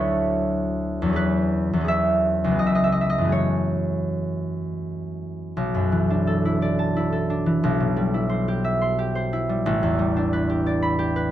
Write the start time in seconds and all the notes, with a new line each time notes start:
Already playing: D2 F#3 A3 C#4 E4 A4 C#5 D5 F#5
1.02 E2 F#3
1.09 C#4 G#4
1.16 B4
1.73 E2 F#3
1.81 C#4 G#4
1.88 E5
2.44 C#2 F#3
2.51 B3 G#4
2.59 D#5
2.67 E5
2.75 D#5
2.84 E5
2.92 D#5
3.01 E5
3.10 D#5
3.18 F#2 E3
3.25 A3 G#4
3.32 C#5
5.57 B1
5.74 F#2
5.92 E3
6.10 D4
6.27 A4
6.45 E4
6.62 D5
6.79 A5
6.97 E4
7.12 A4
7.30 D4
7.46 E3
7.64 B1
7.80 B2
7.97 G3
8.14 E4
8.29 C5
8.48 G4
8.64 E5
8.81 C6
8.99 G4
9.15 C5
9.33 E4
9.49 G3
9.66 A1
9.83 E2
9.99 G3
10.16 D4
10.33 B4
10.50 G4
10.66 D5
10.82 B5
10.99 G4
11.16 B4